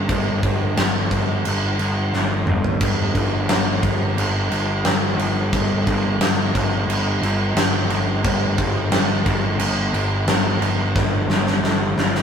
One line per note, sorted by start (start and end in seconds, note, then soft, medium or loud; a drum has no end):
0.09 0.41 G1 loud
0.09 kick loud
0.09 crash medium
0.43 0.75 G1 medium
0.43 kick medium
0.43 crash medium
0.77 1.09 G1 loud
0.77 snare loud
0.77 crash medium
1.11 1.43 G1 medium
1.11 kick medium
1.11 crash medium
1.45 1.77 G1 loud
1.45 crash medium
1.79 2.11 G1 loud
1.79 crash medium
2.14 2.45 G1 medium
2.14 snare medium
2.47 2.79 G1 medium
2.47 mid tom medium
2.64 floor tom medium
2.80 3.13 G1 loud
2.80 kick loud
2.80 crash medium
3.15 3.47 G1 medium
3.15 kick medium
3.15 crash medium
3.49 3.81 G1 loud
3.49 snare loud
3.49 crash medium
3.83 4.15 G1 medium
3.83 kick medium
3.83 crash medium
4.17 4.49 G1 medium
4.17 crash medium
4.51 4.83 G1 medium
4.51 crash medium
4.85 5.17 G1 medium
4.85 snare loud
4.85 crash medium
5.18 5.50 G1 medium
5.18 crash medium
5.53 5.85 G1 loud
5.53 kick loud
5.53 crash medium
5.87 6.19 G1 medium
5.87 kick medium
5.87 crash medium
6.19 6.52 G1 medium
6.19 snare loud
6.19 crash medium
6.55 6.86 G1 medium
6.55 kick medium
6.55 crash medium
6.86 7.19 G1 medium
6.86 crash medium
7.22 7.54 G1 medium
7.22 crash medium
7.55 7.88 G1 loud
7.55 snare loud
7.55 crash medium
7.90 8.22 G1 medium
7.90 crash medium
8.24 8.56 G1 medium
8.24 kick loud
8.24 crash medium
8.58 8.90 G1 medium
8.58 kick medium
8.58 crash medium
8.92 9.24 G1 medium
8.92 snare loud
8.92 crash medium
9.26 9.58 G1 medium
9.26 kick medium
9.26 crash medium
9.58 9.91 G1 loud
9.58 crash medium
9.93 10.26 G1 medium
9.93 crash medium
10.27 10.60 G1 medium
10.27 snare loud
10.27 crash medium
10.61 10.93 G1 medium
10.61 crash medium
10.95 11.28 G1 loud
10.95 kick loud
10.95 snare medium
11.28 11.61 G1 medium
11.28 snare medium
11.47 snare medium
11.62 11.95 G1 medium
11.62 snare medium
11.97 12.22 G1 medium
11.97 snare medium
12.15 snare medium